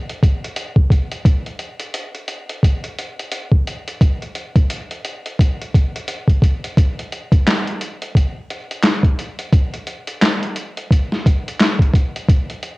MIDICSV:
0, 0, Header, 1, 2, 480
1, 0, Start_track
1, 0, Tempo, 689655
1, 871, Time_signature, 4, 2, 24, 8
1, 8893, End_track
2, 0, Start_track
2, 0, Title_t, "Drums"
2, 67, Note_on_c, 9, 42, 31
2, 137, Note_off_c, 9, 42, 0
2, 159, Note_on_c, 9, 36, 82
2, 164, Note_on_c, 9, 42, 59
2, 229, Note_off_c, 9, 36, 0
2, 234, Note_off_c, 9, 42, 0
2, 310, Note_on_c, 9, 42, 37
2, 379, Note_off_c, 9, 42, 0
2, 392, Note_on_c, 9, 42, 76
2, 462, Note_off_c, 9, 42, 0
2, 530, Note_on_c, 9, 36, 81
2, 599, Note_off_c, 9, 36, 0
2, 628, Note_on_c, 9, 36, 77
2, 638, Note_on_c, 9, 42, 48
2, 698, Note_off_c, 9, 36, 0
2, 708, Note_off_c, 9, 42, 0
2, 776, Note_on_c, 9, 42, 44
2, 846, Note_off_c, 9, 42, 0
2, 871, Note_on_c, 9, 36, 117
2, 874, Note_on_c, 9, 42, 75
2, 940, Note_off_c, 9, 36, 0
2, 943, Note_off_c, 9, 42, 0
2, 1018, Note_on_c, 9, 42, 26
2, 1088, Note_off_c, 9, 42, 0
2, 1107, Note_on_c, 9, 42, 48
2, 1177, Note_off_c, 9, 42, 0
2, 1250, Note_on_c, 9, 42, 53
2, 1319, Note_off_c, 9, 42, 0
2, 1350, Note_on_c, 9, 42, 87
2, 1420, Note_off_c, 9, 42, 0
2, 1494, Note_on_c, 9, 42, 29
2, 1564, Note_off_c, 9, 42, 0
2, 1587, Note_on_c, 9, 42, 60
2, 1656, Note_off_c, 9, 42, 0
2, 1737, Note_on_c, 9, 42, 38
2, 1806, Note_off_c, 9, 42, 0
2, 1831, Note_on_c, 9, 36, 73
2, 1841, Note_on_c, 9, 42, 70
2, 1900, Note_off_c, 9, 36, 0
2, 1910, Note_off_c, 9, 42, 0
2, 1976, Note_on_c, 9, 42, 35
2, 2046, Note_off_c, 9, 42, 0
2, 2078, Note_on_c, 9, 42, 54
2, 2147, Note_off_c, 9, 42, 0
2, 2223, Note_on_c, 9, 42, 43
2, 2292, Note_off_c, 9, 42, 0
2, 2307, Note_on_c, 9, 42, 74
2, 2377, Note_off_c, 9, 42, 0
2, 2447, Note_on_c, 9, 36, 74
2, 2516, Note_off_c, 9, 36, 0
2, 2556, Note_on_c, 9, 42, 52
2, 2626, Note_off_c, 9, 42, 0
2, 2698, Note_on_c, 9, 42, 43
2, 2768, Note_off_c, 9, 42, 0
2, 2791, Note_on_c, 9, 36, 109
2, 2795, Note_on_c, 9, 42, 73
2, 2860, Note_off_c, 9, 36, 0
2, 2864, Note_off_c, 9, 42, 0
2, 2938, Note_on_c, 9, 42, 25
2, 3008, Note_off_c, 9, 42, 0
2, 3029, Note_on_c, 9, 42, 50
2, 3099, Note_off_c, 9, 42, 0
2, 3172, Note_on_c, 9, 36, 102
2, 3172, Note_on_c, 9, 42, 47
2, 3241, Note_off_c, 9, 36, 0
2, 3242, Note_off_c, 9, 42, 0
2, 3272, Note_on_c, 9, 42, 90
2, 3341, Note_off_c, 9, 42, 0
2, 3418, Note_on_c, 9, 42, 34
2, 3487, Note_off_c, 9, 42, 0
2, 3513, Note_on_c, 9, 42, 59
2, 3583, Note_off_c, 9, 42, 0
2, 3660, Note_on_c, 9, 42, 37
2, 3730, Note_off_c, 9, 42, 0
2, 3753, Note_on_c, 9, 36, 86
2, 3763, Note_on_c, 9, 42, 73
2, 3823, Note_off_c, 9, 36, 0
2, 3833, Note_off_c, 9, 42, 0
2, 3908, Note_on_c, 9, 42, 32
2, 3977, Note_off_c, 9, 42, 0
2, 3998, Note_on_c, 9, 36, 84
2, 4002, Note_on_c, 9, 42, 55
2, 4067, Note_off_c, 9, 36, 0
2, 4071, Note_off_c, 9, 42, 0
2, 4146, Note_on_c, 9, 42, 40
2, 4216, Note_off_c, 9, 42, 0
2, 4231, Note_on_c, 9, 42, 70
2, 4300, Note_off_c, 9, 42, 0
2, 4368, Note_on_c, 9, 36, 72
2, 4382, Note_on_c, 9, 42, 29
2, 4438, Note_off_c, 9, 36, 0
2, 4451, Note_off_c, 9, 42, 0
2, 4469, Note_on_c, 9, 36, 76
2, 4479, Note_on_c, 9, 42, 55
2, 4538, Note_off_c, 9, 36, 0
2, 4549, Note_off_c, 9, 42, 0
2, 4622, Note_on_c, 9, 42, 43
2, 4692, Note_off_c, 9, 42, 0
2, 4713, Note_on_c, 9, 36, 116
2, 4719, Note_on_c, 9, 42, 80
2, 4783, Note_off_c, 9, 36, 0
2, 4788, Note_off_c, 9, 42, 0
2, 4865, Note_on_c, 9, 42, 31
2, 4935, Note_off_c, 9, 42, 0
2, 4957, Note_on_c, 9, 42, 50
2, 5027, Note_off_c, 9, 42, 0
2, 5093, Note_on_c, 9, 36, 100
2, 5096, Note_on_c, 9, 42, 55
2, 5163, Note_off_c, 9, 36, 0
2, 5165, Note_off_c, 9, 42, 0
2, 5198, Note_on_c, 9, 42, 83
2, 5202, Note_on_c, 9, 38, 121
2, 5203, Note_on_c, 9, 39, 98
2, 5268, Note_off_c, 9, 42, 0
2, 5272, Note_off_c, 9, 38, 0
2, 5272, Note_off_c, 9, 39, 0
2, 5340, Note_on_c, 9, 42, 33
2, 5410, Note_off_c, 9, 42, 0
2, 5436, Note_on_c, 9, 42, 63
2, 5505, Note_off_c, 9, 42, 0
2, 5581, Note_on_c, 9, 42, 42
2, 5650, Note_off_c, 9, 42, 0
2, 5673, Note_on_c, 9, 36, 83
2, 5685, Note_on_c, 9, 42, 71
2, 5742, Note_off_c, 9, 36, 0
2, 5754, Note_off_c, 9, 42, 0
2, 5919, Note_on_c, 9, 42, 61
2, 5989, Note_off_c, 9, 42, 0
2, 6062, Note_on_c, 9, 42, 44
2, 6132, Note_off_c, 9, 42, 0
2, 6146, Note_on_c, 9, 42, 77
2, 6149, Note_on_c, 9, 38, 109
2, 6150, Note_on_c, 9, 39, 87
2, 6216, Note_off_c, 9, 42, 0
2, 6219, Note_off_c, 9, 38, 0
2, 6220, Note_off_c, 9, 39, 0
2, 6286, Note_on_c, 9, 36, 93
2, 6295, Note_on_c, 9, 42, 31
2, 6356, Note_off_c, 9, 36, 0
2, 6364, Note_off_c, 9, 42, 0
2, 6395, Note_on_c, 9, 42, 53
2, 6464, Note_off_c, 9, 42, 0
2, 6534, Note_on_c, 9, 42, 46
2, 6603, Note_off_c, 9, 42, 0
2, 6630, Note_on_c, 9, 36, 127
2, 6632, Note_on_c, 9, 42, 78
2, 6699, Note_off_c, 9, 36, 0
2, 6701, Note_off_c, 9, 42, 0
2, 6776, Note_on_c, 9, 42, 31
2, 6846, Note_off_c, 9, 42, 0
2, 6868, Note_on_c, 9, 42, 49
2, 6938, Note_off_c, 9, 42, 0
2, 7011, Note_on_c, 9, 42, 53
2, 7080, Note_off_c, 9, 42, 0
2, 7111, Note_on_c, 9, 42, 90
2, 7114, Note_on_c, 9, 38, 119
2, 7115, Note_on_c, 9, 39, 103
2, 7180, Note_off_c, 9, 42, 0
2, 7184, Note_off_c, 9, 38, 0
2, 7185, Note_off_c, 9, 39, 0
2, 7257, Note_on_c, 9, 42, 34
2, 7327, Note_off_c, 9, 42, 0
2, 7349, Note_on_c, 9, 42, 64
2, 7419, Note_off_c, 9, 42, 0
2, 7497, Note_on_c, 9, 42, 42
2, 7567, Note_off_c, 9, 42, 0
2, 7591, Note_on_c, 9, 36, 92
2, 7602, Note_on_c, 9, 42, 80
2, 7661, Note_off_c, 9, 36, 0
2, 7672, Note_off_c, 9, 42, 0
2, 7740, Note_on_c, 9, 38, 35
2, 7810, Note_off_c, 9, 38, 0
2, 7837, Note_on_c, 9, 36, 86
2, 7841, Note_on_c, 9, 42, 66
2, 7906, Note_off_c, 9, 36, 0
2, 7910, Note_off_c, 9, 42, 0
2, 7990, Note_on_c, 9, 42, 45
2, 8059, Note_off_c, 9, 42, 0
2, 8074, Note_on_c, 9, 42, 77
2, 8077, Note_on_c, 9, 38, 112
2, 8078, Note_on_c, 9, 39, 97
2, 8143, Note_off_c, 9, 42, 0
2, 8147, Note_off_c, 9, 38, 0
2, 8147, Note_off_c, 9, 39, 0
2, 8208, Note_on_c, 9, 36, 84
2, 8226, Note_on_c, 9, 42, 36
2, 8277, Note_off_c, 9, 36, 0
2, 8296, Note_off_c, 9, 42, 0
2, 8308, Note_on_c, 9, 36, 86
2, 8319, Note_on_c, 9, 42, 59
2, 8377, Note_off_c, 9, 36, 0
2, 8388, Note_off_c, 9, 42, 0
2, 8463, Note_on_c, 9, 42, 46
2, 8533, Note_off_c, 9, 42, 0
2, 8551, Note_on_c, 9, 36, 125
2, 8557, Note_on_c, 9, 42, 80
2, 8620, Note_off_c, 9, 36, 0
2, 8626, Note_off_c, 9, 42, 0
2, 8698, Note_on_c, 9, 42, 31
2, 8768, Note_off_c, 9, 42, 0
2, 8789, Note_on_c, 9, 42, 49
2, 8859, Note_off_c, 9, 42, 0
2, 8893, End_track
0, 0, End_of_file